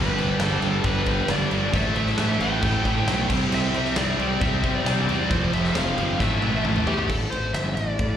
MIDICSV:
0, 0, Header, 1, 5, 480
1, 0, Start_track
1, 0, Tempo, 446429
1, 1864, Time_signature, 4, 2, 24, 8
1, 8782, End_track
2, 0, Start_track
2, 0, Title_t, "Lead electric guitar"
2, 0, Program_c, 0, 29
2, 0, Note_on_c, 0, 71, 86
2, 450, Note_off_c, 0, 71, 0
2, 454, Note_on_c, 0, 69, 90
2, 916, Note_off_c, 0, 69, 0
2, 921, Note_on_c, 0, 71, 87
2, 1405, Note_on_c, 0, 74, 97
2, 1407, Note_off_c, 0, 71, 0
2, 1841, Note_off_c, 0, 74, 0
2, 1889, Note_on_c, 0, 76, 98
2, 2110, Note_off_c, 0, 76, 0
2, 2122, Note_on_c, 0, 76, 112
2, 2590, Note_on_c, 0, 79, 94
2, 2606, Note_off_c, 0, 76, 0
2, 3501, Note_off_c, 0, 79, 0
2, 3812, Note_on_c, 0, 76, 99
2, 4243, Note_off_c, 0, 76, 0
2, 4273, Note_on_c, 0, 74, 90
2, 4741, Note_off_c, 0, 74, 0
2, 4745, Note_on_c, 0, 76, 104
2, 5077, Note_off_c, 0, 76, 0
2, 5110, Note_on_c, 0, 74, 91
2, 5698, Note_on_c, 0, 72, 100
2, 5723, Note_off_c, 0, 74, 0
2, 5922, Note_off_c, 0, 72, 0
2, 5951, Note_on_c, 0, 76, 114
2, 6100, Note_off_c, 0, 76, 0
2, 6121, Note_on_c, 0, 76, 87
2, 6185, Note_off_c, 0, 76, 0
2, 6189, Note_on_c, 0, 77, 110
2, 6673, Note_off_c, 0, 77, 0
2, 6677, Note_on_c, 0, 76, 91
2, 7118, Note_off_c, 0, 76, 0
2, 7387, Note_on_c, 0, 67, 71
2, 7610, Note_off_c, 0, 67, 0
2, 7628, Note_on_c, 0, 69, 86
2, 7851, Note_off_c, 0, 69, 0
2, 7861, Note_on_c, 0, 72, 83
2, 8100, Note_on_c, 0, 76, 88
2, 8112, Note_off_c, 0, 72, 0
2, 8328, Note_off_c, 0, 76, 0
2, 8336, Note_on_c, 0, 74, 89
2, 8782, Note_off_c, 0, 74, 0
2, 8782, End_track
3, 0, Start_track
3, 0, Title_t, "Distorted electric guitar"
3, 0, Program_c, 1, 30
3, 0, Note_on_c, 1, 43, 85
3, 0, Note_on_c, 1, 50, 97
3, 0, Note_on_c, 1, 55, 100
3, 180, Note_off_c, 1, 43, 0
3, 184, Note_off_c, 1, 50, 0
3, 191, Note_off_c, 1, 55, 0
3, 193, Note_on_c, 1, 43, 77
3, 197, Note_on_c, 1, 50, 96
3, 204, Note_on_c, 1, 55, 103
3, 417, Note_off_c, 1, 43, 0
3, 421, Note_off_c, 1, 50, 0
3, 425, Note_off_c, 1, 55, 0
3, 430, Note_on_c, 1, 43, 83
3, 434, Note_on_c, 1, 50, 96
3, 438, Note_on_c, 1, 55, 100
3, 660, Note_off_c, 1, 43, 0
3, 666, Note_off_c, 1, 50, 0
3, 673, Note_on_c, 1, 43, 94
3, 677, Note_off_c, 1, 55, 0
3, 679, Note_on_c, 1, 50, 99
3, 690, Note_on_c, 1, 55, 107
3, 899, Note_off_c, 1, 43, 0
3, 910, Note_off_c, 1, 50, 0
3, 910, Note_off_c, 1, 55, 0
3, 912, Note_on_c, 1, 43, 86
3, 923, Note_on_c, 1, 50, 80
3, 923, Note_on_c, 1, 55, 99
3, 1137, Note_off_c, 1, 43, 0
3, 1138, Note_off_c, 1, 50, 0
3, 1145, Note_off_c, 1, 55, 0
3, 1149, Note_on_c, 1, 43, 97
3, 1151, Note_on_c, 1, 50, 93
3, 1157, Note_on_c, 1, 55, 91
3, 1371, Note_off_c, 1, 43, 0
3, 1377, Note_off_c, 1, 50, 0
3, 1382, Note_off_c, 1, 55, 0
3, 1384, Note_on_c, 1, 43, 99
3, 1389, Note_on_c, 1, 50, 115
3, 1395, Note_on_c, 1, 55, 107
3, 1615, Note_off_c, 1, 43, 0
3, 1619, Note_off_c, 1, 50, 0
3, 1624, Note_off_c, 1, 55, 0
3, 1628, Note_on_c, 1, 43, 87
3, 1632, Note_on_c, 1, 50, 96
3, 1637, Note_on_c, 1, 55, 93
3, 1850, Note_off_c, 1, 50, 0
3, 1851, Note_off_c, 1, 43, 0
3, 1854, Note_on_c, 1, 45, 99
3, 1856, Note_off_c, 1, 55, 0
3, 1862, Note_on_c, 1, 52, 102
3, 1865, Note_on_c, 1, 57, 108
3, 2087, Note_off_c, 1, 45, 0
3, 2100, Note_on_c, 1, 45, 80
3, 2101, Note_off_c, 1, 57, 0
3, 2106, Note_off_c, 1, 52, 0
3, 2110, Note_on_c, 1, 52, 99
3, 2114, Note_on_c, 1, 57, 90
3, 2320, Note_off_c, 1, 45, 0
3, 2333, Note_off_c, 1, 57, 0
3, 2333, Note_on_c, 1, 45, 87
3, 2334, Note_off_c, 1, 52, 0
3, 2338, Note_on_c, 1, 52, 93
3, 2346, Note_on_c, 1, 57, 98
3, 2564, Note_off_c, 1, 45, 0
3, 2577, Note_off_c, 1, 57, 0
3, 2577, Note_on_c, 1, 45, 84
3, 2580, Note_off_c, 1, 52, 0
3, 2584, Note_on_c, 1, 52, 94
3, 2590, Note_on_c, 1, 57, 105
3, 2801, Note_off_c, 1, 45, 0
3, 2806, Note_off_c, 1, 57, 0
3, 2807, Note_off_c, 1, 52, 0
3, 2814, Note_on_c, 1, 45, 90
3, 2819, Note_on_c, 1, 57, 86
3, 2820, Note_on_c, 1, 52, 84
3, 3047, Note_off_c, 1, 45, 0
3, 3053, Note_off_c, 1, 52, 0
3, 3058, Note_off_c, 1, 57, 0
3, 3060, Note_on_c, 1, 45, 88
3, 3066, Note_on_c, 1, 52, 86
3, 3071, Note_on_c, 1, 57, 106
3, 3285, Note_off_c, 1, 45, 0
3, 3291, Note_off_c, 1, 52, 0
3, 3297, Note_off_c, 1, 57, 0
3, 3298, Note_on_c, 1, 45, 98
3, 3304, Note_on_c, 1, 52, 106
3, 3310, Note_on_c, 1, 57, 113
3, 3525, Note_off_c, 1, 45, 0
3, 3528, Note_off_c, 1, 52, 0
3, 3531, Note_off_c, 1, 57, 0
3, 3547, Note_on_c, 1, 48, 104
3, 3550, Note_on_c, 1, 55, 111
3, 3551, Note_on_c, 1, 60, 109
3, 3762, Note_off_c, 1, 48, 0
3, 3770, Note_off_c, 1, 55, 0
3, 3775, Note_on_c, 1, 48, 100
3, 3778, Note_off_c, 1, 60, 0
3, 3782, Note_on_c, 1, 55, 98
3, 3783, Note_on_c, 1, 60, 103
3, 4008, Note_off_c, 1, 48, 0
3, 4012, Note_off_c, 1, 55, 0
3, 4021, Note_on_c, 1, 48, 85
3, 4025, Note_on_c, 1, 55, 90
3, 4028, Note_off_c, 1, 60, 0
3, 4033, Note_on_c, 1, 60, 99
3, 4260, Note_off_c, 1, 48, 0
3, 4264, Note_off_c, 1, 55, 0
3, 4273, Note_on_c, 1, 48, 98
3, 4277, Note_on_c, 1, 55, 100
3, 4281, Note_off_c, 1, 60, 0
3, 4285, Note_on_c, 1, 60, 89
3, 4493, Note_off_c, 1, 48, 0
3, 4498, Note_off_c, 1, 55, 0
3, 4506, Note_on_c, 1, 48, 95
3, 4511, Note_on_c, 1, 55, 94
3, 4516, Note_off_c, 1, 60, 0
3, 4520, Note_on_c, 1, 60, 103
3, 4739, Note_off_c, 1, 48, 0
3, 4744, Note_off_c, 1, 55, 0
3, 4752, Note_on_c, 1, 48, 82
3, 4754, Note_off_c, 1, 60, 0
3, 4757, Note_on_c, 1, 55, 89
3, 4758, Note_on_c, 1, 60, 94
3, 4974, Note_off_c, 1, 48, 0
3, 4981, Note_off_c, 1, 55, 0
3, 4986, Note_on_c, 1, 48, 84
3, 4994, Note_on_c, 1, 55, 94
3, 4995, Note_off_c, 1, 60, 0
3, 4999, Note_on_c, 1, 60, 110
3, 5202, Note_off_c, 1, 48, 0
3, 5212, Note_off_c, 1, 55, 0
3, 5215, Note_on_c, 1, 48, 104
3, 5221, Note_off_c, 1, 60, 0
3, 5225, Note_on_c, 1, 55, 107
3, 5225, Note_on_c, 1, 60, 109
3, 5449, Note_off_c, 1, 48, 0
3, 5459, Note_off_c, 1, 55, 0
3, 5462, Note_on_c, 1, 48, 88
3, 5470, Note_off_c, 1, 60, 0
3, 5472, Note_on_c, 1, 55, 94
3, 5475, Note_on_c, 1, 60, 100
3, 5687, Note_off_c, 1, 48, 0
3, 5692, Note_off_c, 1, 55, 0
3, 5697, Note_on_c, 1, 41, 98
3, 5703, Note_on_c, 1, 48, 112
3, 5707, Note_on_c, 1, 53, 118
3, 5934, Note_off_c, 1, 41, 0
3, 5936, Note_off_c, 1, 48, 0
3, 5945, Note_off_c, 1, 53, 0
3, 5947, Note_on_c, 1, 41, 89
3, 5949, Note_on_c, 1, 48, 90
3, 5958, Note_on_c, 1, 53, 97
3, 6173, Note_off_c, 1, 41, 0
3, 6177, Note_off_c, 1, 48, 0
3, 6183, Note_off_c, 1, 53, 0
3, 6186, Note_on_c, 1, 41, 77
3, 6190, Note_on_c, 1, 48, 86
3, 6196, Note_on_c, 1, 53, 92
3, 6409, Note_off_c, 1, 41, 0
3, 6416, Note_off_c, 1, 48, 0
3, 6416, Note_off_c, 1, 53, 0
3, 6422, Note_on_c, 1, 41, 99
3, 6429, Note_on_c, 1, 48, 84
3, 6429, Note_on_c, 1, 53, 92
3, 6648, Note_off_c, 1, 41, 0
3, 6651, Note_off_c, 1, 48, 0
3, 6651, Note_off_c, 1, 53, 0
3, 6673, Note_off_c, 1, 60, 0
3, 6674, Note_on_c, 1, 45, 92
3, 6674, Note_on_c, 1, 52, 93
3, 6677, Note_on_c, 1, 57, 90
3, 6891, Note_off_c, 1, 45, 0
3, 6900, Note_off_c, 1, 52, 0
3, 6902, Note_off_c, 1, 57, 0
3, 6904, Note_on_c, 1, 45, 76
3, 6913, Note_on_c, 1, 52, 83
3, 6915, Note_on_c, 1, 57, 90
3, 7127, Note_off_c, 1, 45, 0
3, 7131, Note_off_c, 1, 52, 0
3, 7136, Note_off_c, 1, 57, 0
3, 7140, Note_on_c, 1, 45, 98
3, 7144, Note_on_c, 1, 52, 95
3, 7148, Note_on_c, 1, 57, 99
3, 7370, Note_off_c, 1, 45, 0
3, 7378, Note_off_c, 1, 52, 0
3, 7379, Note_off_c, 1, 57, 0
3, 7383, Note_on_c, 1, 45, 90
3, 7391, Note_on_c, 1, 52, 91
3, 7392, Note_on_c, 1, 57, 99
3, 7610, Note_off_c, 1, 45, 0
3, 7614, Note_off_c, 1, 52, 0
3, 7614, Note_off_c, 1, 57, 0
3, 8782, End_track
4, 0, Start_track
4, 0, Title_t, "Fingered electric bass"
4, 0, Program_c, 2, 33
4, 0, Note_on_c, 2, 31, 104
4, 147, Note_off_c, 2, 31, 0
4, 177, Note_on_c, 2, 31, 85
4, 374, Note_off_c, 2, 31, 0
4, 427, Note_on_c, 2, 31, 101
4, 620, Note_off_c, 2, 31, 0
4, 657, Note_on_c, 2, 31, 84
4, 854, Note_off_c, 2, 31, 0
4, 906, Note_on_c, 2, 31, 83
4, 1290, Note_off_c, 2, 31, 0
4, 1393, Note_on_c, 2, 31, 102
4, 1582, Note_off_c, 2, 31, 0
4, 1628, Note_on_c, 2, 31, 84
4, 1819, Note_off_c, 2, 31, 0
4, 1865, Note_on_c, 2, 33, 106
4, 2057, Note_off_c, 2, 33, 0
4, 2102, Note_on_c, 2, 33, 84
4, 2295, Note_off_c, 2, 33, 0
4, 2350, Note_on_c, 2, 33, 92
4, 2540, Note_off_c, 2, 33, 0
4, 2584, Note_on_c, 2, 33, 85
4, 2776, Note_off_c, 2, 33, 0
4, 2828, Note_on_c, 2, 33, 101
4, 3018, Note_off_c, 2, 33, 0
4, 3064, Note_on_c, 2, 33, 98
4, 3255, Note_off_c, 2, 33, 0
4, 3304, Note_on_c, 2, 35, 96
4, 3495, Note_off_c, 2, 35, 0
4, 3543, Note_on_c, 2, 36, 87
4, 3734, Note_off_c, 2, 36, 0
4, 3777, Note_on_c, 2, 36, 107
4, 3971, Note_off_c, 2, 36, 0
4, 4021, Note_on_c, 2, 36, 89
4, 4213, Note_off_c, 2, 36, 0
4, 4259, Note_on_c, 2, 36, 92
4, 4452, Note_off_c, 2, 36, 0
4, 4502, Note_on_c, 2, 36, 82
4, 4693, Note_off_c, 2, 36, 0
4, 4747, Note_on_c, 2, 36, 94
4, 5129, Note_off_c, 2, 36, 0
4, 5219, Note_on_c, 2, 36, 92
4, 5412, Note_off_c, 2, 36, 0
4, 5453, Note_on_c, 2, 40, 83
4, 5648, Note_off_c, 2, 40, 0
4, 5710, Note_on_c, 2, 29, 107
4, 5899, Note_off_c, 2, 29, 0
4, 5935, Note_on_c, 2, 29, 88
4, 6130, Note_off_c, 2, 29, 0
4, 6179, Note_on_c, 2, 29, 87
4, 6373, Note_off_c, 2, 29, 0
4, 6415, Note_on_c, 2, 31, 89
4, 6610, Note_off_c, 2, 31, 0
4, 6668, Note_on_c, 2, 33, 97
4, 6858, Note_off_c, 2, 33, 0
4, 6900, Note_on_c, 2, 33, 86
4, 7094, Note_off_c, 2, 33, 0
4, 7137, Note_on_c, 2, 33, 95
4, 7333, Note_off_c, 2, 33, 0
4, 7385, Note_on_c, 2, 40, 91
4, 7578, Note_off_c, 2, 40, 0
4, 7624, Note_on_c, 2, 33, 93
4, 7832, Note_off_c, 2, 33, 0
4, 7860, Note_on_c, 2, 33, 75
4, 8070, Note_off_c, 2, 33, 0
4, 8103, Note_on_c, 2, 31, 85
4, 8312, Note_off_c, 2, 31, 0
4, 8335, Note_on_c, 2, 33, 84
4, 8549, Note_off_c, 2, 33, 0
4, 8596, Note_on_c, 2, 45, 93
4, 8782, Note_off_c, 2, 45, 0
4, 8782, End_track
5, 0, Start_track
5, 0, Title_t, "Drums"
5, 197, Note_on_c, 9, 49, 66
5, 305, Note_off_c, 9, 49, 0
5, 427, Note_on_c, 9, 49, 84
5, 428, Note_on_c, 9, 38, 111
5, 534, Note_off_c, 9, 49, 0
5, 535, Note_off_c, 9, 38, 0
5, 668, Note_on_c, 9, 49, 64
5, 776, Note_off_c, 9, 49, 0
5, 901, Note_on_c, 9, 49, 74
5, 907, Note_on_c, 9, 36, 108
5, 1009, Note_off_c, 9, 49, 0
5, 1015, Note_off_c, 9, 36, 0
5, 1141, Note_on_c, 9, 49, 61
5, 1147, Note_on_c, 9, 36, 88
5, 1248, Note_off_c, 9, 49, 0
5, 1254, Note_off_c, 9, 36, 0
5, 1380, Note_on_c, 9, 49, 74
5, 1381, Note_on_c, 9, 38, 106
5, 1487, Note_off_c, 9, 49, 0
5, 1488, Note_off_c, 9, 38, 0
5, 1624, Note_on_c, 9, 49, 63
5, 1731, Note_off_c, 9, 49, 0
5, 1864, Note_on_c, 9, 49, 85
5, 1866, Note_on_c, 9, 36, 114
5, 1972, Note_off_c, 9, 49, 0
5, 1973, Note_off_c, 9, 36, 0
5, 2103, Note_on_c, 9, 49, 63
5, 2210, Note_off_c, 9, 49, 0
5, 2225, Note_on_c, 9, 38, 30
5, 2333, Note_off_c, 9, 38, 0
5, 2341, Note_on_c, 9, 49, 83
5, 2342, Note_on_c, 9, 38, 118
5, 2448, Note_off_c, 9, 49, 0
5, 2449, Note_off_c, 9, 38, 0
5, 2585, Note_on_c, 9, 49, 66
5, 2692, Note_off_c, 9, 49, 0
5, 2822, Note_on_c, 9, 49, 85
5, 2826, Note_on_c, 9, 36, 110
5, 2929, Note_off_c, 9, 49, 0
5, 2933, Note_off_c, 9, 36, 0
5, 3065, Note_on_c, 9, 49, 64
5, 3067, Note_on_c, 9, 36, 84
5, 3172, Note_off_c, 9, 49, 0
5, 3174, Note_off_c, 9, 36, 0
5, 3308, Note_on_c, 9, 49, 85
5, 3309, Note_on_c, 9, 38, 110
5, 3415, Note_off_c, 9, 49, 0
5, 3416, Note_off_c, 9, 38, 0
5, 3547, Note_on_c, 9, 36, 117
5, 3547, Note_on_c, 9, 49, 101
5, 3654, Note_off_c, 9, 36, 0
5, 3655, Note_off_c, 9, 49, 0
5, 3787, Note_on_c, 9, 49, 92
5, 3894, Note_off_c, 9, 49, 0
5, 4025, Note_on_c, 9, 49, 66
5, 4132, Note_off_c, 9, 49, 0
5, 4145, Note_on_c, 9, 38, 36
5, 4252, Note_off_c, 9, 38, 0
5, 4260, Note_on_c, 9, 49, 87
5, 4261, Note_on_c, 9, 38, 121
5, 4367, Note_off_c, 9, 49, 0
5, 4368, Note_off_c, 9, 38, 0
5, 4510, Note_on_c, 9, 49, 63
5, 4617, Note_off_c, 9, 49, 0
5, 4745, Note_on_c, 9, 49, 79
5, 4746, Note_on_c, 9, 36, 121
5, 4852, Note_off_c, 9, 49, 0
5, 4854, Note_off_c, 9, 36, 0
5, 4985, Note_on_c, 9, 49, 59
5, 4986, Note_on_c, 9, 36, 93
5, 5092, Note_off_c, 9, 49, 0
5, 5093, Note_off_c, 9, 36, 0
5, 5229, Note_on_c, 9, 49, 68
5, 5230, Note_on_c, 9, 38, 104
5, 5336, Note_off_c, 9, 49, 0
5, 5337, Note_off_c, 9, 38, 0
5, 5471, Note_on_c, 9, 49, 65
5, 5579, Note_off_c, 9, 49, 0
5, 5704, Note_on_c, 9, 49, 78
5, 5707, Note_on_c, 9, 36, 127
5, 5812, Note_off_c, 9, 49, 0
5, 5815, Note_off_c, 9, 36, 0
5, 5949, Note_on_c, 9, 49, 58
5, 6056, Note_off_c, 9, 49, 0
5, 6069, Note_on_c, 9, 38, 35
5, 6176, Note_off_c, 9, 38, 0
5, 6184, Note_on_c, 9, 49, 79
5, 6185, Note_on_c, 9, 38, 107
5, 6292, Note_off_c, 9, 49, 0
5, 6293, Note_off_c, 9, 38, 0
5, 6427, Note_on_c, 9, 49, 65
5, 6535, Note_off_c, 9, 49, 0
5, 6668, Note_on_c, 9, 38, 59
5, 6669, Note_on_c, 9, 36, 109
5, 6775, Note_off_c, 9, 38, 0
5, 6777, Note_off_c, 9, 36, 0
5, 6906, Note_on_c, 9, 48, 76
5, 7013, Note_off_c, 9, 48, 0
5, 7147, Note_on_c, 9, 47, 75
5, 7254, Note_off_c, 9, 47, 0
5, 7267, Note_on_c, 9, 45, 89
5, 7374, Note_off_c, 9, 45, 0
5, 7387, Note_on_c, 9, 43, 105
5, 7494, Note_off_c, 9, 43, 0
5, 7509, Note_on_c, 9, 43, 90
5, 7617, Note_off_c, 9, 43, 0
5, 7627, Note_on_c, 9, 57, 108
5, 7630, Note_on_c, 9, 36, 109
5, 7734, Note_off_c, 9, 57, 0
5, 7737, Note_off_c, 9, 36, 0
5, 7874, Note_on_c, 9, 51, 69
5, 7981, Note_off_c, 9, 51, 0
5, 8111, Note_on_c, 9, 51, 87
5, 8112, Note_on_c, 9, 38, 100
5, 8219, Note_off_c, 9, 51, 0
5, 8220, Note_off_c, 9, 38, 0
5, 8352, Note_on_c, 9, 51, 72
5, 8460, Note_off_c, 9, 51, 0
5, 8590, Note_on_c, 9, 51, 79
5, 8593, Note_on_c, 9, 36, 110
5, 8697, Note_off_c, 9, 51, 0
5, 8701, Note_off_c, 9, 36, 0
5, 8782, End_track
0, 0, End_of_file